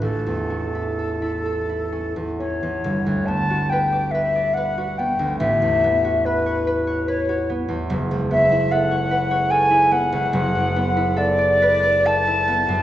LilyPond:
<<
  \new Staff \with { instrumentName = "Flute" } { \time 3/4 \key a \mixolydian \tempo 4 = 71 a'2~ a'8 cis''8~ | cis''8 a''8 g''8 e''8 fis''8 g''8 | e''4 b'4 cis''8 r8 | r8 e''8 fis''4 gis''8 fis''8~ |
fis''4 d''4 a''4 | }
  \new Staff \with { instrumentName = "Harp" } { \time 3/4 \key a \mixolydian <a,, a'>16 e,16 cis'16 e'16 a'16 e'16 a'16 e'16 cis'16 e,16 cis'16 e,16 | g,,16 d,16 b16 fis'16 b'16 d''16 b'16 d''16 b'16 fis'16 b16 d,16 | a,,16 e,16 b16 fis'16 b'16 cis''16 b'16 cis''16 b'16 fis'16 b16 e,16 | fis,,16 cis,16 b16 e'16 a'16 cis''16 b'16 cis''16 a'16 e'16 b16 cis,16 |
fis,,16 fis,16 b16 e'16 a'16 d''16 b'16 d''16 a'16 e'16 b16 fis,16 | }
>>